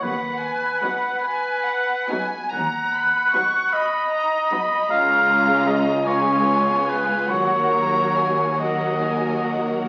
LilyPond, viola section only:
\new Staff \with { instrumentName = "Viola section" } { \time 12/8 \key b \lydian \tempo 4. = 50 << { r4 b8 r4 b8 r4 b8 r4 b8 | cis'4. cis'8. b8. ais4. ais4. | } \\ { r4 fis8 r4 fis8 r4 fis8 r4 fis8 | gis4. gis4. fis4. fis4. | } >> }